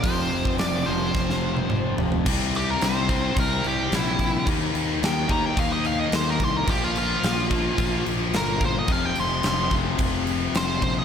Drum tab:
CC |----------------|x-x-x-x-x-x-x-x-|x-x-x-x-x-x-x-x-|x-x-x-x-x-x-x-x-|
HH |o---o-----------|----------------|----------------|----------------|
SD |----o---oo------|----o-------o---|----o-------o---|----o-------o---|
T1 |-----------o----|----------------|----------------|----------------|
T2 |------------o---|----------------|----------------|----------------|
FT |--------------oo|----------------|----------------|----------------|
BD |o--o----o-------|o-----o-o-----o-|o-----o-o-----o-|o-----o-o-----o-|

CC |x-x-x-x-x-x-x-x-|
HH |----------------|
SD |----o-------o---|
T1 |----------------|
T2 |----------------|
FT |----------------|
BD |o-----o-o-----o-|